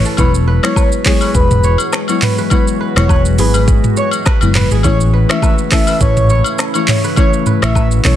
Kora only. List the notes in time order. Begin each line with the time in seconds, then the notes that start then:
Already playing: B4 C#5
0.05 A4
0.18 C#5
0.48 B4
0.64 C#5
0.77 B4
1.06 G#4
1.22 B4
1.64 C#5
2.09 C#5
2.38 B4
2.51 C#5
2.81 B4
2.97 C#5
3.10 B4
3.39 G#4
3.55 B4
3.97 C#5
4.26 B4
4.55 B4
4.71 G#4
4.84 C#5
5.13 B4
5.30 C#5
5.43 B4
5.72 A4
5.88 B4
6.30 C#5
6.75 C#5
7.04 B4
7.18 C#5
7.47 B4
7.63 C#5
7.76 B4
8.05 A4